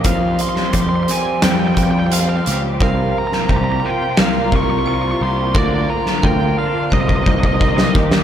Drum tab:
HH |x-x-x-x-x-x-x-x-|----------------|----------------|
SD |---o----o-------|---o----o-------|---o---------o-o|
BD |o---o-----o-----|o---o-----o-----|o---o---ooooo-o-|